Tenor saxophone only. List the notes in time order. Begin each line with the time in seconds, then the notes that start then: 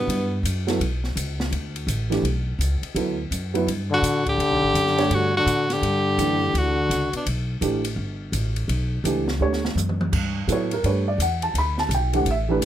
Already playing: B3
3.93 F#4
4.29 G4
5.14 F#4
5.37 F#4
5.73 G4
6.58 F#4
7.16 D4